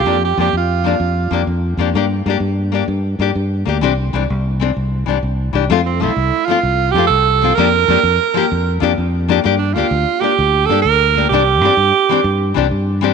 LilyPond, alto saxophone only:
\new Staff \with { instrumentName = "Alto saxophone" } { \time 12/8 \key f \major \tempo 4. = 128 g'8 g'8 g'8 f'2. r4. | r1. | r1. | r8 c'8 e'4. f'4. g'8 a'4. |
bes'1 r2 | r8 d'8 f'4. g'4. a'8 bes'4. | g'1 r2 | }